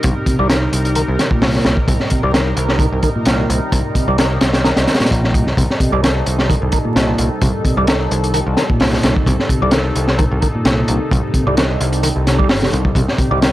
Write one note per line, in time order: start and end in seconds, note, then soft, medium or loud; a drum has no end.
0.00 13.52 C3 medium
0.00 0.10 C3 medium
0.00 13.52 D#3 medium
0.00 13.52 G3 medium
0.00 13.52 D#4 medium
0.00 5.56 A#4 medium
0.00 closed hi-hat medium
0.04 0.13 C2 medium
0.04 kick loud
0.26 0.38 C3 medium
0.26 kick medium
0.26 closed hi-hat medium
0.39 0.68 C2 loud
0.39 0.48 G3 medium
0.50 0.56 D#3 medium
0.50 snare loud
0.50 closed hi-hat medium
0.73 1.02 C2 medium
0.73 closed hi-hat medium
0.85 closed hi-hat soft
0.95 1.02 D#3 loud
0.95 closed hi-hat medium
1.08 1.16 C2 medium
1.19 1.25 D#3 medium
1.19 snare medium
1.19 closed hi-hat medium
1.31 1.76 A#2 medium
1.31 muted picked electric bass stroke soft
1.31 kick medium
1.42 1.59 C2 medium
1.42 snare loud
1.42 open hi-hat medium
1.55 snare soft
1.65 1.74 C2 medium
1.65 snare medium
1.65 closed hi-hat medium
1.77 kick medium
1.87 1.97 C2 medium
1.87 1.94 C3 medium
1.87 kick loud
1.87 closed hi-hat medium
2.00 snare soft
2.10 2.22 C3 medium
2.10 kick medium
2.10 closed hi-hat medium
2.23 2.52 C2 loud
2.23 2.32 G3 medium
2.34 2.40 D#3 medium
2.34 snare loud
2.34 closed hi-hat medium
2.57 2.87 C2 medium
2.57 closed hi-hat medium
2.69 snare soft
2.79 2.86 D#3 loud
2.79 kick loud
2.79 closed hi-hat medium
2.92 3.00 C2 medium
3.03 3.10 D#3 medium
3.03 kick medium
3.03 closed hi-hat medium
3.16 3.61 A#2 medium
3.16 muted picked electric bass stroke soft
3.25 3.43 C2 loud
3.25 snare loud
3.25 closed hi-hat medium
3.49 3.58 C2 medium
3.49 closed hi-hat medium
3.72 3.81 C2 medium
3.72 3.79 C3 medium
3.72 kick loud
3.72 closed hi-hat medium
3.95 4.07 C3 medium
3.95 kick medium
3.95 closed hi-hat medium
4.08 4.37 C2 loud
4.08 4.17 G3 medium
4.18 4.25 D#3 medium
4.18 snare loud
4.18 closed hi-hat medium
4.41 4.71 C2 medium
4.41 snare loud
4.41 closed hi-hat medium
4.53 snare medium
4.53 closed hi-hat medium
4.65 4.71 D#3 medium
4.65 snare loud
4.65 closed hi-hat medium
4.76 4.85 C2 medium
4.76 snare loud
4.76 closed hi-hat medium
4.87 4.94 D#3 medium
4.87 snare medium
4.87 closed hi-hat medium
4.94 snare medium
4.94 closed hi-hat medium
5.00 5.45 A#2 medium
5.00 muted picked electric bass stroke soft
5.00 snare medium
5.00 closed hi-hat medium
5.05 snare medium
5.05 closed hi-hat medium
5.11 5.34 A#1 medium
5.11 kick medium
5.11 closed hi-hat medium
5.24 snare soft
5.34 5.51 C2 medium
5.34 kick medium
5.34 closed hi-hat medium
5.47 snare soft
5.57 5.66 C2 medium
5.57 5.63 C3 medium
5.57 12.95 A4 medium
5.57 kick loud
5.57 closed hi-hat medium
5.70 snare soft
5.80 5.91 C3 medium
5.80 kick medium
5.80 closed hi-hat medium
5.92 6.21 C2 loud
5.92 6.01 G3 medium
6.03 6.09 D#3 medium
6.03 snare loud
6.03 closed hi-hat medium
6.26 6.56 C2 medium
6.26 closed hi-hat medium
6.39 snare medium
6.49 6.55 D#3 loud
6.49 kick medium
6.49 closed hi-hat medium
6.62 6.70 C2 medium
6.72 6.79 D#3 medium
6.72 kick medium
6.72 closed hi-hat medium
6.85 7.30 A#2 medium
6.85 muted picked electric bass stroke soft
6.96 7.13 C2 loud
6.96 snare loud
6.96 closed hi-hat medium
7.18 7.28 C2 medium
7.18 closed hi-hat medium
7.41 7.51 C2 loud
7.41 7.48 C3 medium
7.41 kick loud
7.41 closed hi-hat medium
7.65 7.76 C3 medium
7.65 kick medium
7.65 closed hi-hat medium
7.77 8.06 C2 loud
7.77 7.86 G3 medium
7.87 7.94 D#3 medium
7.87 snare loud
7.87 closed hi-hat medium
8.11 8.41 C2 medium
8.11 closed hi-hat medium
8.24 closed hi-hat soft
8.34 8.40 D#3 medium
8.34 closed hi-hat medium
8.46 8.54 C2 medium
8.57 8.63 D#3 medium
8.57 snare medium
8.57 closed hi-hat medium
8.70 9.15 A#2 medium
8.70 muted picked electric bass stroke soft
8.70 kick loud
8.80 8.97 C2 medium
8.80 snare loud
8.80 open hi-hat medium
8.93 snare medium
9.03 9.12 C2 medium
9.03 snare loud
9.03 closed hi-hat medium
9.16 kick medium
9.26 9.35 C2 medium
9.26 9.33 C3 medium
9.26 kick loud
9.26 closed hi-hat medium
9.40 snare soft
9.49 9.61 C3 medium
9.49 kick medium
9.49 closed hi-hat medium
9.62 9.91 C2 loud
9.62 9.71 G3 medium
9.71 9.79 D#3 medium
9.71 snare loud
9.71 closed hi-hat medium
9.96 10.25 C2 medium
9.96 closed hi-hat medium
10.08 snare soft
10.19 10.25 D#3 loud
10.19 kick loud
10.19 closed hi-hat medium
10.31 10.39 C2 medium
10.42 10.48 D#3 medium
10.42 kick medium
10.42 closed hi-hat medium
10.55 10.99 A#2 medium
10.55 muted picked electric bass stroke soft
10.65 10.82 C2 medium
10.65 snare loud
10.65 closed hi-hat medium
10.88 10.97 C2 medium
10.88 closed hi-hat medium
11.11 11.20 C2 loud
11.11 11.17 C3 medium
11.11 kick loud
11.11 closed hi-hat medium
11.34 11.46 C3 medium
11.34 kick medium
11.34 closed hi-hat medium
11.47 11.75 C2 loud
11.47 11.55 G3 medium
11.57 11.64 D#3 medium
11.57 snare loud
11.57 closed hi-hat medium
11.80 12.10 C2 medium
11.80 closed hi-hat medium
11.93 closed hi-hat soft
12.03 12.09 D#3 loud
12.03 closed hi-hat medium
12.16 12.50 C2 medium
12.27 12.38 C3 medium
12.27 snare medium
12.27 closed hi-hat medium
12.39 12.48 G3 loud
12.39 kick medium
12.49 12.66 G1 medium
12.49 snare loud
12.49 open hi-hat medium
12.62 12.71 C3 medium
12.62 snare medium
12.73 12.90 C2 medium
12.73 closed hi-hat medium
12.85 kick medium
12.95 13.04 C2 loud
12.95 13.02 C3 medium
12.95 13.52 G4 medium
12.95 kick loud
12.95 closed hi-hat medium
13.08 snare soft
13.18 13.30 C3 medium
13.18 kick medium
13.18 closed hi-hat medium
13.31 13.52 C2 loud
13.31 13.40 G3 medium
13.42 13.48 D#3 medium
13.42 snare loud
13.42 closed hi-hat medium